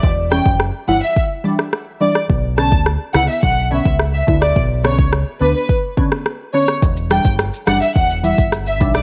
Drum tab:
HH |----------------|----------------|----------------|--x---x---x---x-|
SH |----------------|----------------|----------------|xxxxxxxxxxxxxxxx|
SD |--r-r------rr--r|--r-r-r-----r--r|--r-r------rr--r|--r-r-r-----r--r|
BD |o--o----o-------|o--o----o--o--o-|o--o----o-o-----|o--o----o--o--o-|